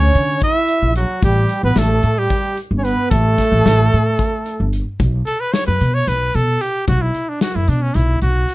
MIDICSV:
0, 0, Header, 1, 5, 480
1, 0, Start_track
1, 0, Key_signature, 2, "minor"
1, 0, Tempo, 537634
1, 1098, Time_signature, 7, 3, 24, 8
1, 7630, End_track
2, 0, Start_track
2, 0, Title_t, "Trumpet"
2, 0, Program_c, 0, 56
2, 0, Note_on_c, 0, 73, 94
2, 345, Note_off_c, 0, 73, 0
2, 386, Note_on_c, 0, 76, 97
2, 829, Note_off_c, 0, 76, 0
2, 859, Note_on_c, 0, 66, 76
2, 1082, Note_off_c, 0, 66, 0
2, 1108, Note_on_c, 0, 67, 82
2, 1439, Note_off_c, 0, 67, 0
2, 1470, Note_on_c, 0, 71, 79
2, 1591, Note_on_c, 0, 69, 87
2, 1605, Note_off_c, 0, 71, 0
2, 1949, Note_on_c, 0, 67, 82
2, 1963, Note_off_c, 0, 69, 0
2, 2303, Note_off_c, 0, 67, 0
2, 2483, Note_on_c, 0, 73, 62
2, 2533, Note_on_c, 0, 71, 83
2, 2547, Note_off_c, 0, 73, 0
2, 2770, Note_off_c, 0, 71, 0
2, 2775, Note_on_c, 0, 69, 97
2, 4182, Note_off_c, 0, 69, 0
2, 4695, Note_on_c, 0, 69, 85
2, 4822, Note_on_c, 0, 71, 83
2, 4836, Note_off_c, 0, 69, 0
2, 4938, Note_on_c, 0, 73, 92
2, 4951, Note_off_c, 0, 71, 0
2, 5053, Note_off_c, 0, 73, 0
2, 5059, Note_on_c, 0, 71, 78
2, 5303, Note_on_c, 0, 73, 89
2, 5317, Note_off_c, 0, 71, 0
2, 5428, Note_on_c, 0, 71, 83
2, 5442, Note_off_c, 0, 73, 0
2, 5670, Note_on_c, 0, 69, 90
2, 5683, Note_off_c, 0, 71, 0
2, 5902, Note_on_c, 0, 67, 82
2, 5916, Note_off_c, 0, 69, 0
2, 6134, Note_off_c, 0, 67, 0
2, 6140, Note_on_c, 0, 66, 83
2, 6265, Note_on_c, 0, 64, 75
2, 6278, Note_off_c, 0, 66, 0
2, 6506, Note_on_c, 0, 62, 66
2, 6519, Note_off_c, 0, 64, 0
2, 6621, Note_off_c, 0, 62, 0
2, 6626, Note_on_c, 0, 66, 74
2, 6743, Note_on_c, 0, 64, 68
2, 6756, Note_off_c, 0, 66, 0
2, 6865, Note_on_c, 0, 62, 69
2, 6878, Note_off_c, 0, 64, 0
2, 6982, Note_on_c, 0, 61, 71
2, 6995, Note_off_c, 0, 62, 0
2, 7103, Note_on_c, 0, 64, 76
2, 7117, Note_off_c, 0, 61, 0
2, 7335, Note_off_c, 0, 64, 0
2, 7341, Note_on_c, 0, 66, 77
2, 7630, Note_off_c, 0, 66, 0
2, 7630, End_track
3, 0, Start_track
3, 0, Title_t, "Flugelhorn"
3, 0, Program_c, 1, 56
3, 0, Note_on_c, 1, 61, 79
3, 340, Note_off_c, 1, 61, 0
3, 378, Note_on_c, 1, 64, 74
3, 825, Note_off_c, 1, 64, 0
3, 859, Note_on_c, 1, 54, 60
3, 1082, Note_off_c, 1, 54, 0
3, 1096, Note_on_c, 1, 55, 73
3, 1432, Note_off_c, 1, 55, 0
3, 1458, Note_on_c, 1, 59, 66
3, 1585, Note_on_c, 1, 57, 64
3, 1598, Note_off_c, 1, 59, 0
3, 1950, Note_on_c, 1, 55, 57
3, 1963, Note_off_c, 1, 57, 0
3, 2303, Note_off_c, 1, 55, 0
3, 2485, Note_on_c, 1, 61, 61
3, 2545, Note_on_c, 1, 59, 83
3, 2558, Note_off_c, 1, 61, 0
3, 2778, Note_off_c, 1, 59, 0
3, 2783, Note_on_c, 1, 57, 100
3, 4186, Note_off_c, 1, 57, 0
3, 7630, End_track
4, 0, Start_track
4, 0, Title_t, "Upright bass"
4, 0, Program_c, 2, 32
4, 135, Note_on_c, 2, 50, 86
4, 324, Note_off_c, 2, 50, 0
4, 732, Note_on_c, 2, 34, 77
4, 922, Note_off_c, 2, 34, 0
4, 1094, Note_on_c, 2, 33, 87
4, 1283, Note_off_c, 2, 33, 0
4, 1458, Note_on_c, 2, 33, 78
4, 1552, Note_off_c, 2, 33, 0
4, 1568, Note_on_c, 2, 33, 99
4, 1760, Note_off_c, 2, 33, 0
4, 1814, Note_on_c, 2, 45, 81
4, 2004, Note_off_c, 2, 45, 0
4, 2417, Note_on_c, 2, 31, 76
4, 2606, Note_off_c, 2, 31, 0
4, 2780, Note_on_c, 2, 33, 87
4, 2967, Note_off_c, 2, 33, 0
4, 3140, Note_on_c, 2, 33, 81
4, 3233, Note_off_c, 2, 33, 0
4, 3264, Note_on_c, 2, 33, 97
4, 3450, Note_off_c, 2, 33, 0
4, 3513, Note_on_c, 2, 45, 79
4, 3695, Note_off_c, 2, 45, 0
4, 4106, Note_on_c, 2, 31, 74
4, 4291, Note_off_c, 2, 31, 0
4, 4462, Note_on_c, 2, 35, 88
4, 4648, Note_off_c, 2, 35, 0
4, 5067, Note_on_c, 2, 42, 77
4, 5158, Note_off_c, 2, 42, 0
4, 5187, Note_on_c, 2, 47, 84
4, 5371, Note_off_c, 2, 47, 0
4, 5422, Note_on_c, 2, 35, 79
4, 5608, Note_off_c, 2, 35, 0
4, 5667, Note_on_c, 2, 47, 81
4, 5851, Note_off_c, 2, 47, 0
4, 6143, Note_on_c, 2, 35, 90
4, 6329, Note_off_c, 2, 35, 0
4, 6744, Note_on_c, 2, 42, 75
4, 6835, Note_off_c, 2, 42, 0
4, 6859, Note_on_c, 2, 47, 86
4, 7046, Note_off_c, 2, 47, 0
4, 7099, Note_on_c, 2, 35, 91
4, 7286, Note_off_c, 2, 35, 0
4, 7338, Note_on_c, 2, 35, 78
4, 7525, Note_off_c, 2, 35, 0
4, 7630, End_track
5, 0, Start_track
5, 0, Title_t, "Drums"
5, 131, Note_on_c, 9, 42, 57
5, 220, Note_off_c, 9, 42, 0
5, 364, Note_on_c, 9, 42, 71
5, 372, Note_on_c, 9, 36, 93
5, 453, Note_off_c, 9, 42, 0
5, 461, Note_off_c, 9, 36, 0
5, 611, Note_on_c, 9, 42, 56
5, 701, Note_off_c, 9, 42, 0
5, 853, Note_on_c, 9, 42, 62
5, 942, Note_off_c, 9, 42, 0
5, 1092, Note_on_c, 9, 42, 84
5, 1094, Note_on_c, 9, 36, 107
5, 1181, Note_off_c, 9, 42, 0
5, 1183, Note_off_c, 9, 36, 0
5, 1332, Note_on_c, 9, 42, 62
5, 1421, Note_off_c, 9, 42, 0
5, 1570, Note_on_c, 9, 38, 104
5, 1570, Note_on_c, 9, 42, 77
5, 1659, Note_off_c, 9, 38, 0
5, 1659, Note_off_c, 9, 42, 0
5, 1811, Note_on_c, 9, 42, 60
5, 1900, Note_off_c, 9, 42, 0
5, 2055, Note_on_c, 9, 42, 67
5, 2056, Note_on_c, 9, 36, 89
5, 2144, Note_off_c, 9, 42, 0
5, 2146, Note_off_c, 9, 36, 0
5, 2297, Note_on_c, 9, 42, 53
5, 2386, Note_off_c, 9, 42, 0
5, 2541, Note_on_c, 9, 42, 57
5, 2631, Note_off_c, 9, 42, 0
5, 2780, Note_on_c, 9, 36, 101
5, 2784, Note_on_c, 9, 42, 75
5, 2869, Note_off_c, 9, 36, 0
5, 2873, Note_off_c, 9, 42, 0
5, 3021, Note_on_c, 9, 36, 62
5, 3024, Note_on_c, 9, 38, 33
5, 3024, Note_on_c, 9, 42, 55
5, 3110, Note_off_c, 9, 36, 0
5, 3113, Note_off_c, 9, 38, 0
5, 3113, Note_off_c, 9, 42, 0
5, 3265, Note_on_c, 9, 38, 111
5, 3265, Note_on_c, 9, 42, 77
5, 3354, Note_off_c, 9, 38, 0
5, 3354, Note_off_c, 9, 42, 0
5, 3505, Note_on_c, 9, 42, 53
5, 3595, Note_off_c, 9, 42, 0
5, 3741, Note_on_c, 9, 36, 88
5, 3741, Note_on_c, 9, 42, 67
5, 3830, Note_off_c, 9, 36, 0
5, 3831, Note_off_c, 9, 42, 0
5, 3980, Note_on_c, 9, 42, 54
5, 4069, Note_off_c, 9, 42, 0
5, 4222, Note_on_c, 9, 42, 58
5, 4311, Note_off_c, 9, 42, 0
5, 4462, Note_on_c, 9, 36, 97
5, 4462, Note_on_c, 9, 42, 76
5, 4551, Note_off_c, 9, 36, 0
5, 4552, Note_off_c, 9, 42, 0
5, 4705, Note_on_c, 9, 42, 55
5, 4794, Note_off_c, 9, 42, 0
5, 4942, Note_on_c, 9, 38, 105
5, 4942, Note_on_c, 9, 42, 75
5, 5031, Note_off_c, 9, 38, 0
5, 5031, Note_off_c, 9, 42, 0
5, 5185, Note_on_c, 9, 42, 58
5, 5275, Note_off_c, 9, 42, 0
5, 5424, Note_on_c, 9, 42, 67
5, 5513, Note_off_c, 9, 42, 0
5, 5663, Note_on_c, 9, 42, 49
5, 5752, Note_off_c, 9, 42, 0
5, 5902, Note_on_c, 9, 42, 54
5, 5991, Note_off_c, 9, 42, 0
5, 6140, Note_on_c, 9, 36, 99
5, 6141, Note_on_c, 9, 42, 72
5, 6230, Note_off_c, 9, 36, 0
5, 6230, Note_off_c, 9, 42, 0
5, 6379, Note_on_c, 9, 42, 49
5, 6468, Note_off_c, 9, 42, 0
5, 6617, Note_on_c, 9, 38, 107
5, 6617, Note_on_c, 9, 42, 70
5, 6707, Note_off_c, 9, 38, 0
5, 6707, Note_off_c, 9, 42, 0
5, 6854, Note_on_c, 9, 42, 53
5, 6943, Note_off_c, 9, 42, 0
5, 7091, Note_on_c, 9, 42, 65
5, 7181, Note_off_c, 9, 42, 0
5, 7334, Note_on_c, 9, 42, 49
5, 7423, Note_off_c, 9, 42, 0
5, 7577, Note_on_c, 9, 42, 53
5, 7630, Note_off_c, 9, 42, 0
5, 7630, End_track
0, 0, End_of_file